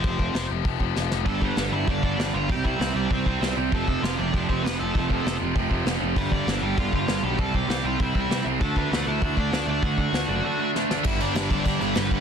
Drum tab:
CC |--------|--------|--------|--------|
HH |o-o-o---|o-o-o-o-|o-o-o-o-|o-o-o-o-|
SD |--o---oo|--o---o-|--o---o-|--o---o-|
BD |oo--oo--|oo--oo--|oo--oo--|oo--oo--|

CC |--------|--------|--------|--------|
HH |o-o-o-o-|o-o-o-o-|o-o-o-o-|o-o-o-o-|
SD |--o---o-|--o---o-|--o---o-|--o---o-|
BD |oo--oo--|oo--oo--|oo--oo--|oo--oo--|

CC |--------|xxxxxxxx|
HH |o-o-----|--------|
SD |--o---oo|--o---o-|
BD |oo------|o--oo--o|